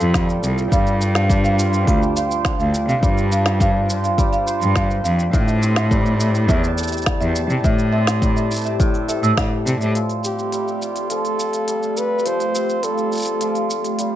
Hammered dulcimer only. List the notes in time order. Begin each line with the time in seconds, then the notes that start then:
Already playing: F3 G3 C4 F4 A4
0.14 G3
0.72 G3
1.01 D4
1.30 D4
1.59 F4
1.88 G3
2.16 C5
2.45 D4
3.03 G3
3.31 D4
3.60 D4
3.89 F4
4.18 G3
4.47 C5
4.76 D4
5.33 A2
5.62 C4
5.91 G3
6.20 E4
6.49 A2
6.77 A4
7.06 G3
7.64 A2
7.93 C4
8.22 G3
8.51 E4
8.79 A2
9.08 A4
9.37 G3
9.95 F3
10.24 C4
10.52 G3
10.81 F4
11.10 F3
11.68 G3
11.97 A4
12.26 F3
12.54 C4
12.83 G3
13.12 F4
13.41 F3
13.99 G3